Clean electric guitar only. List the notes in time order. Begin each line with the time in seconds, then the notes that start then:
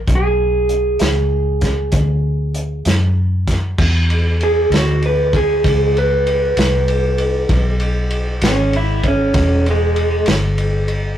0.15 G#4
4.43 G#4
4.75 F#4
5.06 B4
5.36 G#4
5.98 B4
8.47 C#4
8.76 E4
9.08 C#4
9.70 G#3